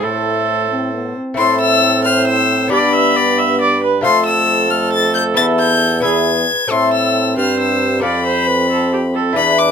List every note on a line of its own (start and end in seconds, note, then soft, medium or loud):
0.00 1.12 A2 soft
0.00 1.32 A3 soft
0.00 0.66 A3 soft
0.00 1.33 C4 soft
0.00 1.33 E4 soft
0.00 1.16 A4 medium
0.00 1.16 C5 medium
0.04 1.14 A2 medium
0.71 0.92 C4 medium
0.93 1.18 B3 soft
1.16 1.37 C4 medium
1.34 2.66 A3 medium
1.34 2.66 C4 soft
1.34 2.73 C4 medium
1.34 2.67 E4 medium
1.34 2.07 A4 medium
1.34 1.59 C6 loud
1.38 2.68 A2 medium
1.61 2.04 E6 loud
2.05 2.71 C5 medium
2.05 2.26 F6 loud
2.27 2.71 E6 loud
2.68 3.98 B3 medium
2.68 3.88 B3 medium
2.68 3.99 D4 medium
2.68 4.00 G4 medium
2.72 4.00 G2 medium
2.72 4.02 G2 medium
2.72 2.93 D5 medium
2.72 3.80 B5 loud
2.95 3.18 E5 medium
3.16 3.40 D5 medium
3.38 3.60 E5 loud
3.61 3.82 D5 medium
3.83 4.04 B4 medium
4.01 5.33 F2 medium
4.01 5.31 A3 medium
4.01 4.67 A3 medium
4.01 5.32 F4 medium
4.01 6.00 A4 medium
4.01 5.32 C5 medium
4.01 4.25 C6 loud
4.05 5.39 F2 medium
4.26 4.72 E6 loud
4.70 5.38 A3 medium
4.70 4.92 F6 medium
4.93 5.14 A6 loud
5.15 5.23 G6 loud
5.34 6.00 E2 medium
5.34 6.04 E2 medium
5.34 5.99 B3 medium
5.34 6.03 B3 medium
5.34 6.01 B4 medium
5.34 6.02 E5 medium
5.34 5.45 A6 loud
5.59 6.03 G6 loud
6.00 6.45 E2 medium
6.00 6.48 E2 medium
6.00 6.67 B3 soft
6.00 6.48 B3 medium
6.00 6.37 G#4 medium
6.00 6.68 B4 soft
6.00 6.68 E5 soft
6.00 6.73 G#6 loud
6.67 7.33 A2 medium
6.67 7.98 C4 medium
6.67 7.99 C4 medium
6.67 7.98 A4 soft
6.67 7.33 A4 medium
6.67 7.99 E5 soft
6.67 6.93 C6 loud
6.94 7.37 E6 loud
7.37 8.05 G2 medium
7.37 8.00 G2 soft
7.37 8.02 C5 medium
7.37 7.59 F6 medium
7.60 8.03 E6 medium
8.00 9.30 C4 medium
8.00 9.33 C4 medium
8.00 9.31 A4 medium
8.00 8.25 D5 medium
8.00 9.32 F5 medium
8.04 9.36 F2 medium
8.04 9.32 F2 medium
8.04 9.12 B5 loud
8.26 8.49 C5 medium
8.47 8.70 B4 medium
8.70 8.92 A4 medium
8.93 9.01 G4 medium
9.15 9.38 A4 medium
9.33 9.71 E2 medium
9.33 9.71 D4 medium
9.33 9.71 E4 medium
9.33 9.71 G#4 medium
9.33 9.71 B4 medium
9.33 9.71 D5 medium
9.33 9.60 B5 loud
9.58 9.71 D6 loud